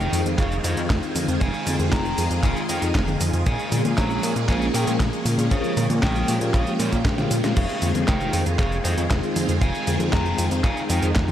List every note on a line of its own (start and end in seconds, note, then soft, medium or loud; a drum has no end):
0.00 3.42 D#3 medium
0.00 11.32 G#3 medium
0.00 3.42 C4 medium
0.00 3.42 F4 medium
0.00 5.47 G#4 medium
0.00 0.19 D#5 medium
0.00 0.19 G5 medium
0.00 closed hi-hat soft
0.00 cabasa soft
0.13 0.23 F2 medium
0.13 open hi-hat medium
0.13 cabasa medium
0.26 0.36 F2 loud
0.26 closed hi-hat medium
0.26 cabasa soft
0.38 0.60 F1 loud
0.38 0.54 G#4 medium
0.38 0.54 F5 medium
0.38 kick loud
0.38 clap medium
0.38 closed hi-hat medium
0.38 cabasa soft
0.52 closed hi-hat soft
0.52 cabasa soft
0.64 0.75 F2 medium
0.64 0.80 C5 medium
0.64 0.80 D#5 medium
0.64 open hi-hat loud
0.64 cabasa medium
0.77 0.88 F2 loud
0.77 closed hi-hat medium
0.77 cabasa soft
0.90 1.00 F1 medium
0.90 kick loud
0.90 snare loud
0.90 clap medium
0.90 closed hi-hat soft
0.90 cabasa soft
1.03 closed hi-hat soft
1.03 cabasa soft
1.15 1.26 F2 medium
1.15 open hi-hat medium
1.15 high tom medium
1.15 cabasa medium
1.28 1.39 F2 medium
1.28 closed hi-hat soft
1.28 cabasa soft
1.41 1.52 F1 loud
1.41 1.73 F5 medium
1.41 1.73 G#5 medium
1.41 kick loud
1.41 closed hi-hat medium
1.41 cabasa soft
1.54 closed hi-hat soft
1.54 cabasa soft
1.67 1.77 F2 medium
1.67 open hi-hat loud
1.67 high tom medium
1.67 cabasa medium
1.80 1.90 F2 medium
1.80 closed hi-hat medium
1.80 high tom medium
1.80 cabasa soft
1.92 2.14 F1 medium
1.92 2.24 G5 medium
1.92 2.24 A#5 medium
1.92 kick loud
1.92 snare loud
1.92 clap medium
1.92 closed hi-hat medium
1.92 cabasa soft
2.05 closed hi-hat soft
2.05 cabasa soft
2.18 2.29 F2 medium
2.18 open hi-hat loud
2.18 cabasa medium
2.31 2.41 F2 loud
2.31 closed hi-hat medium
2.31 cabasa soft
2.43 2.54 F1 medium
2.43 2.60 F5 medium
2.43 2.60 G#5 medium
2.43 kick loud
2.43 clap medium
2.43 closed hi-hat medium
2.43 cabasa soft
2.57 closed hi-hat soft
2.57 cabasa soft
2.69 2.80 F2 medium
2.69 2.86 D#5 medium
2.69 2.86 G5 medium
2.69 open hi-hat loud
2.69 cabasa medium
2.82 2.93 F2 medium
2.82 closed hi-hat medium
2.82 cabasa soft
2.95 3.16 F1 loud
2.95 kick loud
2.95 snare loud
2.95 clap medium
2.95 closed hi-hat medium
2.95 cabasa soft
3.08 closed hi-hat soft
3.08 high tom medium
3.08 cabasa soft
3.20 3.31 F2 medium
3.20 open hi-hat loud
3.20 cabasa medium
3.33 3.44 F2 loud
3.33 closed hi-hat medium
3.33 cabasa soft
3.46 3.57 A#1 loud
3.46 7.53 F3 medium
3.46 7.53 A#3 medium
3.46 7.53 C#4 medium
3.46 3.78 F5 medium
3.46 3.78 G#5 medium
3.46 kick loud
3.46 closed hi-hat medium
3.46 cabasa soft
3.59 closed hi-hat soft
3.59 cabasa soft
3.72 3.82 A#2 medium
3.72 open hi-hat loud
3.72 high tom medium
3.72 cabasa medium
3.85 3.95 A#2 loud
3.85 closed hi-hat medium
3.85 high tom medium
3.85 cabasa soft
3.98 4.19 A#1 medium
3.98 4.29 C#5 medium
3.98 4.29 A#5 medium
3.98 kick loud
3.98 snare loud
3.98 clap medium
3.98 closed hi-hat medium
3.98 cabasa soft
4.11 closed hi-hat soft
4.11 cabasa soft
4.23 4.34 A#2 medium
4.23 open hi-hat loud
4.23 cabasa medium
4.36 4.46 A#2 loud
4.36 closed hi-hat medium
4.36 cabasa soft
4.49 4.70 A#1 loud
4.49 4.65 F5 medium
4.49 4.65 G#5 medium
4.49 kick loud
4.49 clap medium
4.49 closed hi-hat medium
4.49 cabasa soft
4.62 closed hi-hat soft
4.62 cabasa soft
4.74 4.85 A#2 loud
4.74 4.90 A#4 medium
4.74 4.90 G5 medium
4.74 open hi-hat loud
4.74 cabasa medium
4.87 4.98 A#2 loud
4.87 closed hi-hat medium
4.87 cabasa soft
5.00 5.11 A#1 medium
5.00 kick loud
5.00 snare loud
5.00 clap medium
5.00 closed hi-hat medium
5.00 cabasa soft
5.13 closed hi-hat soft
5.13 cabasa soft
5.25 5.36 A#2 medium
5.25 open hi-hat loud
5.25 high tom medium
5.25 cabasa medium
5.38 5.49 A#2 medium
5.38 closed hi-hat medium
5.38 cabasa soft
5.51 5.62 A#1 loud
5.51 7.54 G4 medium
5.51 5.83 C#5 medium
5.51 5.83 F5 medium
5.51 kick loud
5.51 closed hi-hat medium
5.51 cabasa soft
5.64 closed hi-hat soft
5.64 cabasa soft
5.77 5.88 A#2 medium
5.77 open hi-hat loud
5.77 high tom medium
5.77 cabasa medium
5.90 6.00 A#2 medium
5.90 closed hi-hat medium
5.90 high tom medium
5.90 cabasa soft
6.03 6.24 A#1 medium
6.03 6.34 A#4 medium
6.03 6.34 G5 medium
6.03 kick loud
6.03 snare loud
6.03 clap medium
6.03 closed hi-hat medium
6.03 cabasa soft
6.16 closed hi-hat soft
6.16 cabasa soft
6.28 6.39 A#2 medium
6.28 open hi-hat loud
6.28 cabasa medium
6.41 6.52 A#2 loud
6.41 closed hi-hat medium
6.41 cabasa soft
6.54 6.65 A#1 medium
6.54 6.70 C#5 medium
6.54 6.70 F5 medium
6.54 kick loud
6.54 clap medium
6.54 closed hi-hat medium
6.54 swell medium
6.54 cabasa soft
6.67 closed hi-hat soft
6.67 cabasa soft
6.80 6.90 A#2 medium
6.80 6.96 A#4 medium
6.80 6.96 C#5 medium
6.80 open hi-hat loud
6.80 cabasa medium
6.93 7.03 A#2 medium
6.93 kick medium
6.93 closed hi-hat medium
6.93 cabasa soft
7.05 7.26 A#1 medium
7.05 kick loud
7.05 snare loud
7.05 clap medium
7.05 closed hi-hat medium
7.05 cabasa soft
7.18 snare medium
7.18 closed hi-hat soft
7.18 high tom medium
7.18 cabasa soft
7.31 7.41 A#2 medium
7.31 open hi-hat loud
7.31 cabasa medium
7.44 7.54 A#2 medium
7.44 snare loud
7.44 closed hi-hat medium
7.44 cabasa soft
7.56 7.67 F1 loud
7.56 11.32 D#3 medium
7.56 11.32 C4 medium
7.56 11.32 F4 medium
7.56 11.32 G#4 medium
7.56 7.88 G#4 medium
7.56 7.88 F5 medium
7.56 kick loud
7.56 closed hi-hat medium
7.56 crash medium
7.56 cabasa soft
7.69 closed hi-hat soft
7.69 cabasa soft
7.82 7.93 F2 medium
7.82 open hi-hat loud
7.82 high tom medium
7.82 cabasa medium
7.95 8.06 F2 medium
7.95 closed hi-hat medium
7.95 high tom medium
7.95 cabasa soft
8.08 8.29 F1 medium
8.08 8.40 D#5 medium
8.08 8.40 G5 medium
8.08 kick loud
8.08 snare loud
8.08 clap loud
8.08 closed hi-hat medium
8.08 cabasa soft
8.21 closed hi-hat soft
8.21 cabasa soft
8.33 8.44 F2 medium
8.33 open hi-hat medium
8.33 cabasa medium
8.46 8.57 F2 loud
8.46 closed hi-hat medium
8.46 cabasa soft
8.59 8.80 F1 loud
8.59 8.75 G#4 medium
8.59 8.75 F5 medium
8.59 kick loud
8.59 clap medium
8.59 closed hi-hat medium
8.59 cabasa soft
8.72 closed hi-hat soft
8.72 cabasa soft
8.84 8.95 F2 medium
8.84 9.01 C5 medium
8.84 9.01 D#5 medium
8.84 open hi-hat loud
8.84 cabasa medium
8.98 9.08 F2 loud
8.98 closed hi-hat medium
8.98 cabasa soft
9.11 9.21 F1 medium
9.11 kick loud
9.11 snare loud
9.11 clap medium
9.11 closed hi-hat medium
9.11 cabasa soft
9.23 closed hi-hat soft
9.23 cabasa soft
9.36 9.47 F2 medium
9.36 open hi-hat medium
9.36 high tom medium
9.36 cabasa medium
9.49 9.59 F2 medium
9.49 closed hi-hat medium
9.49 cabasa soft
9.61 9.72 F1 loud
9.61 9.93 F5 medium
9.61 9.93 G#5 medium
9.61 kick loud
9.61 closed hi-hat medium
9.61 cabasa soft
9.75 closed hi-hat soft
9.75 cabasa soft
9.87 9.98 F2 medium
9.87 open hi-hat loud
9.87 high tom medium
9.87 cabasa medium
10.00 10.11 F2 loud
10.00 closed hi-hat medium
10.00 high tom medium
10.00 cabasa soft
10.13 10.34 F1 medium
10.13 10.45 G5 medium
10.13 10.45 A#5 medium
10.13 kick loud
10.13 snare loud
10.13 clap loud
10.13 closed hi-hat medium
10.13 cabasa soft
10.26 closed hi-hat soft
10.26 cabasa soft
10.38 10.49 F2 medium
10.38 open hi-hat medium
10.38 cabasa medium
10.51 10.62 F2 loud
10.51 closed hi-hat medium
10.51 cabasa soft
10.64 10.75 F1 medium
10.64 10.80 F5 medium
10.64 10.80 G#5 medium
10.64 kick loud
10.64 clap medium
10.64 closed hi-hat medium
10.64 cabasa soft
10.77 closed hi-hat soft
10.77 cabasa soft
10.90 11.00 F2 loud
10.90 11.06 D#5 medium
10.90 11.06 G5 medium
10.90 open hi-hat loud
10.90 cabasa medium
11.03 11.13 F2 medium
11.03 closed hi-hat medium
11.03 cabasa soft
11.15 11.32 F1 loud
11.15 kick loud
11.15 snare loud
11.15 clap loud
11.15 closed hi-hat medium
11.15 cabasa soft
11.28 closed hi-hat soft
11.28 high tom medium
11.28 cabasa soft